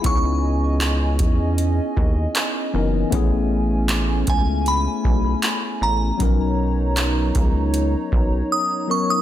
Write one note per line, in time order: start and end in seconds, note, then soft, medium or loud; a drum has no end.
0.00 2.69 B3 medium
0.00 2.68 E4 medium
0.00 3.08 G#5 medium
0.04 1.21 C#2 loud
0.04 3.09 C#4 medium
0.04 2.70 C#4 medium
0.04 2.70 D#4 medium
0.04 2.71 G#4 medium
0.04 3.09 D#5 medium
0.04 1.55 C#6 loud
0.04 kick loud
0.04 closed hi-hat medium
0.81 clap loud
0.81 closed hi-hat medium
1.19 1.80 E2 medium
1.19 kick medium
1.19 closed hi-hat medium
1.58 closed hi-hat medium
1.97 2.27 D#2 loud
1.97 kick medium
2.35 clap loud
2.35 closed hi-hat medium
2.73 3.04 F#1 loud
2.73 3.12 E3 medium
2.73 3.10 B3 medium
2.73 3.11 C#4 medium
2.73 3.13 D#4 medium
2.73 3.13 A#4 medium
3.10 4.24 A1 loud
3.10 6.15 A3 medium
3.10 6.17 A3 medium
3.10 6.15 B3 medium
3.10 6.17 C#4 medium
3.10 6.16 C#4 medium
3.10 6.17 E4 medium
3.10 6.17 G#5 medium
3.10 kick loud
3.10 closed hi-hat medium
3.15 6.17 G#4 medium
3.89 clap loud
3.89 closed hi-hat medium
4.27 4.88 C#2 medium
4.27 4.68 G#5 medium
4.27 kick medium
4.27 closed hi-hat medium
4.66 5.86 B5 loud
4.66 closed hi-hat medium
5.04 5.34 B1 loud
5.04 kick medium
5.43 clap loud
5.43 closed hi-hat medium
5.81 6.11 A1 medium
5.81 8.47 A#5 medium
6.17 7.31 B1 loud
6.17 8.84 F#3 medium
6.17 8.85 B3 medium
6.17 8.85 C#4 medium
6.17 9.22 D#4 medium
6.17 8.86 D#4 medium
6.17 9.22 C#5 medium
6.17 9.22 A#5 medium
6.17 kick loud
6.17 closed hi-hat medium
6.23 8.86 A#4 medium
6.97 clap loud
6.97 closed hi-hat medium
7.35 7.95 C#2 medium
7.35 kick medium
7.35 closed hi-hat medium
7.74 closed hi-hat medium
8.12 8.42 B1 loud
8.12 kick medium
8.52 8.91 D#6 medium
8.87 9.22 F#3 medium
8.87 9.22 B3 soft
8.87 9.22 C#4 medium
8.87 9.22 D#4 medium
8.87 9.22 A#4 medium
8.87 9.10 C#6 medium
9.10 9.22 D#6 medium